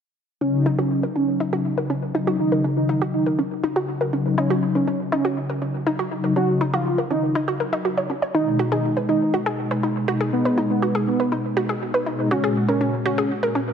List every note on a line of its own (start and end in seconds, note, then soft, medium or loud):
0.41 2.12 C#3 medium
0.41 2.12 F#3 medium
0.41 0.53 C#4 medium
0.41 0.67 C#4 loud
0.41 2.12 D#4 medium
0.66 0.74 D#4 loud
0.79 1.04 C#4 medium
0.79 0.87 F#4 loud
1.03 1.11 A#4 medium
1.16 1.27 C#4 medium
1.16 1.41 C#4 loud
1.40 1.49 D#4 medium
1.53 1.61 F#4 loud
1.78 1.86 A#4 medium
1.90 2.02 C#4 medium
2.15 2.37 C#3 medium
2.15 2.37 F#3 medium
2.15 2.37 D#4 medium
2.15 2.23 D#4 medium
2.27 2.35 F#4 loud
2.39 4.10 C#3 medium
2.39 4.10 F#3 medium
2.39 4.10 D#4 medium
2.39 2.65 D#4 loud
2.52 2.60 A#4 medium
2.64 2.76 C#4 medium
2.77 3.02 D#4 loud
2.89 2.97 D#4 loud
3.02 3.10 F#4 medium
3.14 3.39 D#4 loud
3.26 3.34 A#4 medium
3.39 3.51 C#4 medium
3.64 3.72 D#4 loud
3.76 3.84 F#4 loud
4.01 4.09 A#4 medium
4.13 4.35 C#3 medium
4.13 4.35 F#3 medium
4.13 4.25 C#4 medium
4.13 4.35 D#4 medium
4.38 6.08 C#3 medium
4.38 6.08 F#3 medium
4.38 4.63 C#4 loud
4.38 6.08 D#4 medium
4.38 4.46 D#4 loud
4.50 4.58 F#4 loud
4.75 5.00 C#4 medium
4.75 4.83 A#4 medium
4.87 4.99 C#4 medium
5.12 5.38 C#4 loud
5.12 5.20 D#4 loud
5.25 5.33 F#4 loud
5.50 5.58 A#4 medium
5.62 5.74 C#4 medium
5.87 5.95 D#4 loud
5.99 6.07 F#4 loud
6.11 6.33 C#3 medium
6.11 6.33 F#3 medium
6.11 6.33 D#4 medium
6.24 6.32 A#4 medium
6.36 8.07 C#3 medium
6.36 8.07 F#3 medium
6.36 6.48 C#4 medium
6.36 8.07 D#4 medium
6.36 6.62 F#4 loud
6.61 6.69 D#4 loud
6.73 6.99 F4 medium
6.73 6.82 F#4 loud
6.98 7.06 A#4 medium
7.11 7.22 C#4 medium
7.11 7.36 D#4 loud
7.35 7.44 D#4 loud
7.48 7.56 F#4 loud
7.60 7.68 A#4 medium
7.73 7.81 D#4 loud
7.85 7.93 F#4 medium
7.97 8.02 C#5 medium
8.10 8.18 C#4 medium
8.22 8.34 C#5 medium
8.34 10.05 B2 medium
8.34 10.05 G#3 medium
8.34 8.60 D#4 loud
8.34 10.05 D#4 medium
8.34 8.46 D#4 medium
8.59 8.68 F#4 loud
8.72 8.97 D#4 medium
8.72 8.80 G#4 loud
8.97 9.05 B4 medium
9.09 9.21 D#4 medium
9.09 9.34 D#4 medium
9.34 9.42 F#4 loud
9.46 9.54 G#4 loud
9.71 9.79 B4 medium
9.83 9.95 D#4 medium
10.08 10.30 B2 medium
10.08 10.30 G#3 medium
10.08 10.30 D#4 medium
10.08 10.16 F#4 loud
10.21 10.29 G#4 medium
10.33 12.03 B2 medium
10.33 12.03 G#3 medium
10.33 10.58 B3 loud
10.33 12.03 D#4 medium
10.45 10.53 B4 medium
10.58 10.70 D#4 medium
10.70 10.96 B3 medium
10.82 10.91 F#4 medium
10.95 11.03 G#4 loud
11.07 11.33 B3 loud
11.20 11.28 B4 medium
11.32 11.44 D#4 medium
11.57 11.65 F#4 loud
11.69 11.77 G#4 loud
11.94 12.02 B4 medium
12.06 12.28 B2 medium
12.06 12.28 G#3 medium
12.06 12.18 D#4 medium
12.06 12.28 D#4 medium
12.31 13.73 A#2 medium
12.31 13.73 G#3 medium
12.31 12.57 C#4 loud
12.31 13.73 F#4 medium
12.31 12.39 F#4 loud
12.44 12.52 G#4 loud
12.68 12.94 C#4 loud
12.68 12.77 A#4 medium
12.81 12.93 C#4 medium
13.06 13.31 C#4 medium
13.06 13.14 F#4 loud
13.18 13.26 G#4 loud
13.43 13.51 A#4 medium
13.55 13.67 C#4 medium